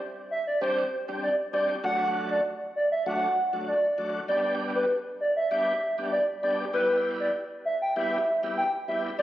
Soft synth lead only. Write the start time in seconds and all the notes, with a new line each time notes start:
0.31 E5
0.47 D5
0.61 C5
1.23 D5
1.53 D5
1.84 F#5
2.31 D5
2.76 D5
2.92 E5
3.06 F#5
3.68 D5
4.28 D5
4.76 B4
5.21 D5
5.37 E5
5.51 E5
6.12 D5
6.43 D5
6.74 B4
7.20 D5
7.65 E5
7.82 G5
7.96 E5
8.58 G5
8.88 E5
9.18 D5